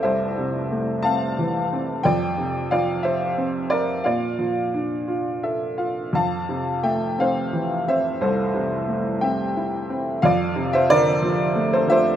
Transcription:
<<
  \new Staff \with { instrumentName = "Upright piano" } { \time 6/8 \key f \major \tempo 4. = 59 <c'' e''>4. <f'' a''>4. | <d'' g''>4 <d'' f''>8 <c'' e''>4 <bes' d''>8 | <d'' f''>2~ <d'' f''>8 r8 | <f'' a''>4 <e'' g''>8 <c'' f''>4 <c'' e''>8 |
<a' c''>4. <e'' g''>4 r8 | <d'' f''>8. <c'' e''>16 <bes' d''>4~ <bes' d''>16 <a' c''>16 <c'' e''>8 | }
  \new Staff \with { instrumentName = "Upright piano" } { \time 6/8 \key f \major <c, c' e'>8 c8 a8 c'8 e8 c'8 | f,8 c8 f4 c'4 | bes,8 f8 d'8 f'8 <a' e''>8 <f' f''>8 | f,8 c8 a8 c'8 e8 c'8 |
c,8 c8 a8 c'8 e'8 c'8 | f,8 c8 d8 f8 a8 f8 | }
>>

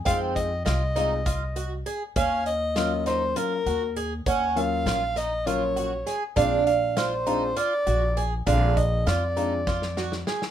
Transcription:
<<
  \new Staff \with { instrumentName = "Soprano saxophone" } { \time 7/8 \key ees \dorian \tempo 4 = 100 f''8 ees''8 ees''2 r8 | f''8 ees''4 c''8 bes'4 r8 | ges''8 f''4 ees''8 des''4 r8 | f''8 f''8 c''4 d''4 r8 |
f''8 ees''8 d''2 r8 | }
  \new Staff \with { instrumentName = "Twelve-string acoustic guitar" } { \time 7/8 \key ees \dorian c'4 f'8 ees'8 f'8 ges'8 aes'8 | des'4 f'8 ees'8 f'8 ges'8 aes'8 | des'4 f'8 ees'8 f'8 ges'8 aes'8 | d'4 f'8 ees'8 f'8 ges'8 aes'8 |
d4 f'8 ees'8 f'8 ges'8 aes'8 | }
  \new Staff \with { instrumentName = "Grand piano" } { \time 7/8 \key ees \dorian <aes c' ees' f'>8 r4 <aes c' ees' f'>8 r4. | r4 <ges bes des' f'>4 <ges bes des' f'>8 r4 | r8 <ges bes des' f'>8 r4 <ges bes des' f'>8 r4 | <aes c' d' f'>8 r4 <aes c' d' f'>8 r4. |
<aes c' d' f'>8 r4 <aes c' d' f'>8 r4. | }
  \new Staff \with { instrumentName = "Upright bass" } { \clef bass \time 7/8 \key ees \dorian f,4 c,2 r8 | ees,2 r8 ees,4 | ees,4 bes,,2 r8 | bes,,2 r8 bes,,4 |
bes,,4 f,2 r8 | }
  \new DrumStaff \with { instrumentName = "Drums" } \drummode { \time 7/8 <hh bd>8 <hh bd>8 <hh sn>8 <hh sn>8 <hh bd>8 hh8 hh8 | <hh bd>8 hh8 <hh sn>8 <hh sn>8 hh8 hh8 hh8 | <hh bd>8 hh8 <hh sn>8 <hh sn>8 hh8 hh8 <hh sn>8 | <hh bd>8 hh8 <hh sn>8 hh8 hh8 hh8 hh8 |
<hh bd>8 <hh bd>8 <hh sn>8 hh8 <bd sn>16 sn16 sn16 sn16 sn16 sn16 | }
>>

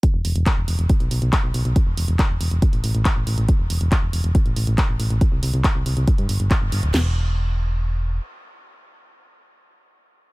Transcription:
<<
  \new Staff \with { instrumentName = "FM bass" } { \clef bass \time 4/4 \key g \major \tempo 4 = 139 r16 e,,16 e,,16 e,,16 r16 e,,16 e,,16 e,,16 r16 b,,16 b,,16 b,,16 r16 b,,16 b,,16 b,,16 | r16 e,,16 e,,16 e,,16 r16 e,,16 e,,16 e,,16 r16 a,,16 a,,16 a,,16 r16 a,,16 a,,16 a,,16 | r16 e,,16 e,,16 e,,16 r16 e,,16 e,,16 e,,16 r16 a,,16 a,,16 a,,16 r16 a,,16 a,,16 a,,16 | r16 c,16 c,16 c,16 r16 c,16 c,16 c,16 r16 g,16 g,,16 g,,16 r16 g,,16 g,,16 d,,16 |
e,,2. r4 | r1 | }
  \new DrumStaff \with { instrumentName = "Drums" } \drummode { \time 4/4 <hh bd>8 hho16 hh16 <hc hh bd>8 hho16 hh16 <hh bd>16 hh16 hho16 hh16 <hc hh bd>8 hho16 hh16 | <hh bd>8 hho16 hh16 <hc hh bd>8 hho16 hh16 <hh bd>16 hh16 hho16 hh16 <hc hh bd>8 hho16 hh16 | <hh bd>8 hho16 hh16 <hc hh bd>8 hho16 hh16 <hh bd>16 hh16 hho16 hh16 <hc hh bd>8 hho16 hh16 | <hh bd>8 hho16 hh16 <hc hh bd>8 hho16 hh16 <hh bd>16 hh16 hho16 hh16 <hc hh bd>8 hho16 hh16 |
<cymc sn>4 r4 r4 r4 | r4 r4 r4 r4 | }
>>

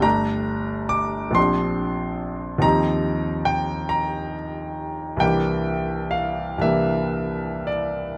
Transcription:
<<
  \new Staff \with { instrumentName = "Grand piano" } { \time 6/8 \key c \mixolydian \tempo 4. = 46 bes''4 d'''8 c'''4. | bes''4 g''8 bes''8 r4 | g''4 f''8 e''4 d''8 | }
  \new Staff \with { instrumentName = "Grand piano" } { \time 6/8 \key c \mixolydian <g,, g a d' g'>4. <bes,, f c' d' g'>4. | <ees, f c' ees' g'>2. | <c, e bes d' g'>4. <c, e bes d' g'>4. | }
>>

